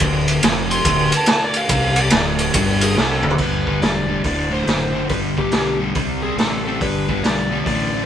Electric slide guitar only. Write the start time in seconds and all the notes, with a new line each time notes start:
0.72 C6
1.17 A5
1.44 D5
1.57 F5
2.01 D5
2.83 G#4
3.00 A4
3.41 B4
3.82 D5
4.26 D5
4.53 C5
5.10 B4
5.39 G4
6.23 G#4
6.39 A4
6.65 A4
6.81 B4
7.23 D5
7.66 D5